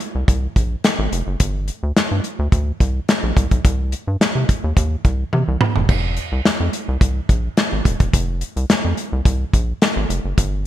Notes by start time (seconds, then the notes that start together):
0.00 closed hi-hat
0.15 C2
0.28 C2, kick, closed hi-hat
0.56 A#1, kick, closed hi-hat
0.84 snare, closed hi-hat
0.99 G#1
1.12 F1, closed hi-hat
1.27 F#1
1.40 G1, kick, closed hi-hat
1.68 closed hi-hat
1.83 D2
1.97 G2, snare, closed hi-hat
2.11 G2
2.24 closed hi-hat
2.39 D2
2.52 D2, kick, closed hi-hat
2.80 C2, kick, closed hi-hat
3.09 snare, closed hi-hat
3.23 A#1
3.37 C2, kick, closed hi-hat
3.51 B1, kick, closed hi-hat
3.65 C2, kick, closed hi-hat
3.92 closed hi-hat
4.07 G2
4.20 C3, snare, closed hi-hat
4.35 C3
4.49 kick, closed hi-hat
4.64 D#2
4.77 D#2, kick, closed hi-hat
5.05 C2, kick, closed hi-hat
5.33 C3, high tom
5.48 C2
5.61 mid tom
5.76 E1, floor tom
5.89 F1, kick, crash
6.17 closed hi-hat
6.32 C2
6.45 F2, snare, closed hi-hat
6.60 F2
6.73 closed hi-hat
6.88 C2
7.01 C2, kick, closed hi-hat
7.29 A#1, kick, closed hi-hat
7.57 snare, closed hi-hat
7.72 G#1
7.85 D#1, kick, closed hi-hat
8.00 E1, kick, closed hi-hat
8.13 F1, kick, closed hi-hat
8.41 closed hi-hat
8.56 C2, closed hi-hat
8.70 F2, snare, closed hi-hat
8.85 F2
8.97 closed hi-hat
9.12 C2
9.25 C2, kick, closed hi-hat
9.53 A#1, kick, closed hi-hat
9.82 snare, closed hi-hat
9.96 G#1
10.09 F1, closed hi-hat
10.25 F#1
10.38 G1, kick, closed hi-hat